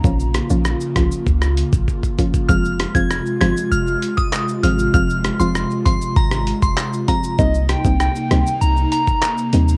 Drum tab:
HH |--x---x---x---x-|--x---x---x---x-|--x---x---x---x-|--x---x---x---x-|
SH |xxxxxxxxxxxxxxxx|xxxxxxxxxxxxxxxx|xxxxxxxxxxxxxxxx|xxxxxxxxxxxxxxxx|
CP |----------------|------------x---|------------x---|------------x---|
SD |--r-r-r--r------|--r-r-r-----r---|--r-r----r--r---|--r-r-r-----r---|
BD |o-----o-o--ooooo|o--o-------o----|o-----o-o--o--o-|o--o-------o----|